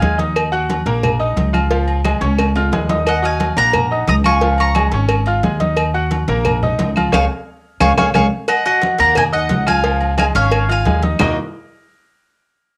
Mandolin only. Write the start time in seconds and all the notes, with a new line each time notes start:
Already playing: F5 G#5
3.08 D#5 F#5
3.25 F5 G#5
3.58 F#5 A#5
4.09 A#5 D#6
4.26 G#5 C#6
4.60 A#5 C#6
7.14 F5 G#5 C#6
7.81 F5 G#5 C#6
7.98 F5 G#5 C#6
8.15 F5 G#5 C#6
8.48 D#5 F#5
8.66 D#5 F#5
9.00 F#5 A#5
9.18 D#5 G#5
9.33 D#5 F#5
9.68 F5 G#5
10.19 F5 G#5
10.36 C#5 F5
10.71 F5 G#5
11.21 D#5